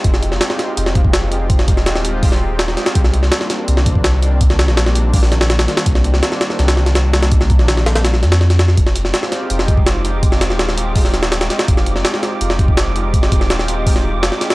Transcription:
<<
  \new Staff \with { instrumentName = "Synth texture" } { \time 4/4 \key f \dorian \tempo 4 = 165 r1 | r1 | r1 | r1 |
r1 | r1 | d'''1~ | d'''1~ |
d'''1~ | d'''1 | }
  \new Staff \with { instrumentName = "Analog synth pad" } { \time 4/4 \key f \dorian <aes c' ees' f' g'>2.~ <aes c' ees' f' g'>8 r8 | <aes c' ees' f' g'>2.~ <aes c' ees' f' g'>8 r8 | <ees g bes c' d'>2.~ <ees g bes c' d'>8 r8 | <ees g bes c' d'>2.~ <ees g bes c' d'>8 r8 |
<ees g bes c' d'>2.~ <ees g bes c' d'>8 r8 | <ees g bes c' d'>2.~ <ees g bes c' d'>8 r8 | <aes c' ees' f' g'>2.~ <aes c' ees' f' g'>8 r8 | <aes c' ees' f' g'>2.~ <aes c' ees' f' g'>8 r8 |
<aes c' ees' f' g'>2.~ <aes c' ees' f' g'>8 r8 | <aes c' ees' f' g'>2.~ <aes c' ees' f' g'>8 r8 | }
  \new Staff \with { instrumentName = "Sub bass" } { \clef bass \time 4/4 \key f \dorian f,,4 r4 f,,2~ | f,,8. ees,,2~ ees,,8. r8 | c,4 r4 c,2~ | c,8. bes,,2~ bes,,8. r8 |
c,4 r4 c,2~ | c,8. bes,,4.~ bes,,16 f,4. | f,,4 r4 f,,2~ | f,,8. ees,,2~ ees,,8. r8 |
f,,4 r4 f,,2~ | f,,8. ees,,2 f,,8 r8. | }
  \new DrumStaff \with { instrumentName = "Drums" } \drummode { \time 4/4 <hh bd>16 sn16 hh16 sn16 <hh sn>16 sn16 <hh sn>8 hh16 sn16 <hh bd>16 bd16 <hh sn>8 hh8 | <hh bd>16 sn16 <hh bd>16 sn16 <hh sn>16 sn16 hh8 <hho bd>16 sn8. <hh sn>16 sn16 <hh sn>16 <hh sn>16 | <hh bd>16 sn16 hh16 sn16 <hh sn>16 sn16 <hh sn>8 hh16 sn16 <hh bd>16 bd16 <hh sn>8 hh8 | <hh bd>16 sn16 <hh sn>16 sn16 <hh sn>16 sn16 hh8 <hho bd>16 sn16 <hh sn>16 sn16 <hh sn>16 <hh sn>16 <hh sn>16 <hh sn>16 |
<hh bd>16 sn16 hh16 sn16 <hh sn>16 sn16 <hh sn>16 sn16 <hh sn>16 <hh sn>16 sn16 <hh sn>16 <hh sn>8 <hh sn>16 <hh sn>16 | <hh bd>16 sn16 <hh bd>16 sn16 <hh sn>16 sn16 <hh sn>16 <hh sn>16 <hh sn>16 sn16 <hh sn>16 <hh sn>16 sn16 <hh sn>16 <hh sn>16 sn16 | <hh bd>16 sn16 hh16 sn16 <hh sn>16 sn16 <hh sn>8 hh16 sn16 <hh bd>16 bd16 <hh sn>8 hh8 | <hh bd>16 sn16 <hh sn>16 sn16 <hh sn>16 sn16 hh8 <hho bd>16 sn16 <hh sn>16 sn16 <hh sn>16 <hh sn>16 <hh sn>16 <hh sn>16 |
<hh bd>16 sn16 hh16 sn16 <hh sn>16 sn16 <hh sn>8 hh16 sn16 <hh bd>16 bd16 <hh sn>8 hh8 | <hh bd>16 sn16 <hh bd>16 sn16 <hh sn>16 sn16 hh8 <hho bd>16 sn8. <hh sn>16 sn16 <hh sn>16 <hh sn>16 | }
>>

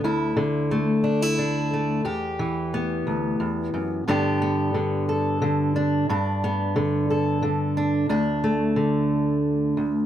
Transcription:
\new Staff \with { instrumentName = "Steel-string acoustic guitar" } { \time 6/8 \key g \lydian \tempo 4. = 60 << { e'4 a8 d'16 e'16 d'8 a8 | g'4 b2 | <d b d' g'>8 b4 a'4 d'8 | d'8 b4 a'4 d'8 |
d'8 a2~ a8 | } \\ { <d, d>8 d2~ d8 | e,8 e4 d,8 e,8 fis,8 | g,4 d4 d4 | g,4 d4 d4 |
d,4 d4. d,8 | } >> }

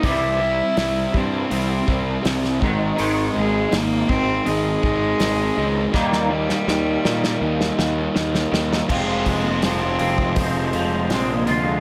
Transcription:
<<
  \new Staff \with { instrumentName = "Cello" } { \time 4/4 \key f \minor \tempo 4 = 81 e'4. c'2 r8 | r8 aes8 bes8 c'8 aes2 | g2. r4 | \tuplet 3/2 { aes4 bes8 } c'4 aes4 \tuplet 3/2 { c'8 bes8 aes8 } | }
  \new Staff \with { instrumentName = "Overdriven electric guitar" } { \clef bass \time 4/4 \key f \minor <c g c' e'>8 <c g c' e'>8 <c g c' e'>8 <c g c' e'>8 <c g c' e'>8 <c g c' e'>8 <c g c' e'>8 <aes, ees aes c' ees'>8 | <aes, ees aes c' ees'>8 <aes, ees aes c' ees'>8 <aes, ees aes c' ees'>8 <aes, ees aes c' ees'>8 <aes, ees aes c' ees'>8 <aes, ees aes c' ees'>8 <aes, ees aes c' ees'>8 <aes, ees aes c' ees'>8 | <ees g bes ees'>8 <ees g bes ees'>8 <ees g bes ees'>8 <ees g bes ees'>8 <ees g bes ees'>8 <ees g bes ees'>8 <ees g bes ees'>8 <ees g bes ees'>8 | <f, c f aes c' f'>1 | }
  \new Staff \with { instrumentName = "Distorted electric guitar" } { \clef bass \time 4/4 \key f \minor r1 | r1 | r1 | <f, c f aes c' f'>1 | }
  \new Staff \with { instrumentName = "Clean electric guitar" } { \clef bass \time 4/4 \key f \minor <c e g>8 <c e>8 <c e>8 <c e>8 <c e>8 <c e>8 <c e>8 <aes, ees aes>8 | <aes, ees aes>8 <aes, ees>8 <aes, ees>8 <aes, ees>8 <aes, ees>8 <aes, ees>8 <aes, ees>8 <aes, ees>8 | <ees g bes>8 <ees g>8 <ees g>8 <ees g>8 <ees g>8 <ees g>8 <ees g>8 <ees g>8 | f,8 aes8 f8 aes8 c'8 f8 aes8 f'8 | }
  \new Staff \with { instrumentName = "Picked electric bass" } { \clef bass \time 4/4 \key f \minor c,4 c,8 g,8 c,8 c,8 c,8 aes,,8 | aes,,8 aes,,8 aes,,8 aes,,8 aes,,8 aes,,8 aes,,8 des,8 | ees,4 ees,8 bes,8 ees,8 ees,8 ees,8 ees,8 | f,,8 f,,8 f,,8 f,,8 f,,8 f,,8 bes,,8 d,8 | }
  \new DrumStaff \with { instrumentName = "Drums" } \drummode { \time 4/4 <hho bd>4 <hho sn>8 bd8 hho8 bd8 <hho sn>16 sn16 bd8 | hho4 <hho sn>8 bd8 hho8 bd8 <hho sn>4 | <bd sn>16 sn8 sn16 sn8 sn16 sn16 r16 sn16 sn8 sn16 sn16 sn16 sn16 | <cymc bd>8 <hho bd>8 <hho sn>8 hho16 bd16 <hho bd>8 hho8 <hho sn>8 hho8 | }
>>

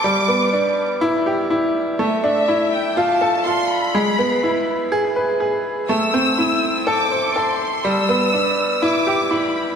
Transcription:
<<
  \new Staff \with { instrumentName = "Violin section" } { \time 4/4 \key g \mixolydian \tempo 4 = 123 d'''4. r2 r8 | e''8 e''4 g''8 a''4 c'''8 b''8~ | b''4. r2 r8 | e'''2 d'''4 c'''4 |
e'''2 d'''4 b''4 | }
  \new Staff \with { instrumentName = "Upright piano" } { \time 4/4 \key g \mixolydian g8 b8 d'8 r8 e'8 g'8 e'8 r8 | a8 d'8 e'8 r8 f'8 a'8 f'8 r8 | gis8 b8 e'8 r8 gis'8 b'8 gis'8 r8 | a8 c'8 e'8 r8 a'8 c''8 a'8 r8 |
g8 b8 d'8 r8 e'8 g'8 e'8 r8 | }
>>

